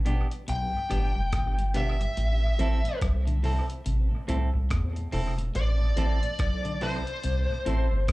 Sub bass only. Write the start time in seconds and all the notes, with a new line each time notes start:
Already playing: A1
0.49 B1
0.91 G1
1.17 F1
1.33 G1
2.17 A1
2.60 A1
3.02 C2
3.86 A1
4.29 C2
4.55 C2
4.71 E2
5.13 E1
5.55 A1
5.98 A1
6.39 B1
7.25 C2
7.67 A1
7.93 G1
8.09 A1